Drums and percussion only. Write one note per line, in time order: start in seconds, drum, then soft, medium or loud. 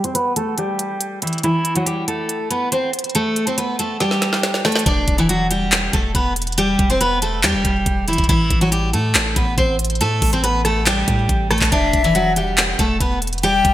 0.04 closed hi-hat medium
0.15 closed hi-hat medium
0.36 closed hi-hat medium
0.58 closed hi-hat medium
0.79 closed hi-hat medium
1.01 closed hi-hat medium
1.22 closed hi-hat medium
1.27 closed hi-hat medium
1.33 closed hi-hat soft
1.38 closed hi-hat soft
1.43 closed hi-hat medium
1.65 closed hi-hat medium
1.76 closed hi-hat medium
1.87 closed hi-hat medium
2.08 closed hi-hat medium
2.29 closed hi-hat medium
2.51 closed hi-hat medium
2.72 closed hi-hat medium
2.93 closed hi-hat medium
2.99 closed hi-hat medium
3.04 closed hi-hat soft
3.10 closed hi-hat soft
3.15 closed hi-hat medium
3.36 closed hi-hat medium
3.47 closed hi-hat medium
3.58 closed hi-hat medium
3.79 closed hi-hat medium
4.00 snare medium
4.00 closed hi-hat medium
4.11 snare soft
4.22 snare medium
4.22 closed hi-hat medium
4.33 snare medium
4.43 snare medium
4.43 closed hi-hat medium
4.54 snare medium
4.65 snare medium
4.65 closed hi-hat soft
4.72 snare medium
4.72 closed hi-hat medium
4.79 closed hi-hat medium
4.86 kick loud
4.86 closed hi-hat medium
5.08 kick loud
5.08 closed hi-hat medium
5.18 closed hi-hat medium
5.29 closed hi-hat medium
5.51 closed hi-hat medium
5.72 clap loud
5.72 closed hi-hat medium
5.93 kick medium
5.93 closed hi-hat medium
6.15 kick medium
6.15 closed hi-hat medium
6.36 closed hi-hat medium
6.42 closed hi-hat medium
6.47 closed hi-hat medium
6.52 closed hi-hat soft
6.58 closed hi-hat medium
6.79 kick loud
6.79 closed hi-hat medium
6.90 closed hi-hat medium
7.01 closed hi-hat medium
7.22 closed hi-hat medium
7.43 clap loud
7.43 closed hi-hat medium
7.65 kick medium
7.65 closed hi-hat medium
7.86 kick medium
7.86 closed hi-hat medium
8.08 closed hi-hat medium
8.13 closed hi-hat medium
8.18 kick loud
8.18 closed hi-hat soft
8.24 closed hi-hat soft
8.29 kick loud
8.29 closed hi-hat medium
8.50 kick loud
8.50 closed hi-hat medium
8.61 closed hi-hat medium
8.72 closed hi-hat medium
8.94 closed hi-hat medium
9.15 clap loud
9.15 closed hi-hat medium
9.36 kick medium
9.36 closed hi-hat medium
9.58 kick medium
9.58 closed hi-hat medium
9.79 closed hi-hat medium
9.85 closed hi-hat medium
9.90 closed hi-hat soft
9.95 closed hi-hat soft
10.01 closed hi-hat medium
10.22 kick medium
10.22 closed hi-hat medium
10.22 open hi-hat medium
10.33 closed hi-hat medium
10.44 closed hi-hat medium
10.65 cross-stick medium
10.65 closed hi-hat medium
10.86 clap loud
10.86 closed hi-hat medium
11.08 kick medium
11.08 closed hi-hat medium
11.29 kick medium
11.29 closed hi-hat medium
11.51 cross-stick loud
11.51 closed hi-hat soft
11.58 kick loud
11.58 clap medium
11.58 closed hi-hat medium
11.65 closed hi-hat medium
11.72 kick loud
11.72 closed hi-hat medium
11.93 kick loud
11.93 closed hi-hat medium
12.04 closed hi-hat medium
12.15 closed hi-hat medium
12.36 closed hi-hat medium
12.58 clap loud
12.58 closed hi-hat medium
12.79 kick medium
12.79 closed hi-hat medium
13.01 kick medium
13.01 closed hi-hat medium
13.22 closed hi-hat medium
13.27 closed hi-hat medium
13.33 closed hi-hat medium
13.38 closed hi-hat soft
13.43 closed hi-hat medium
13.65 kick loud
13.65 closed hi-hat medium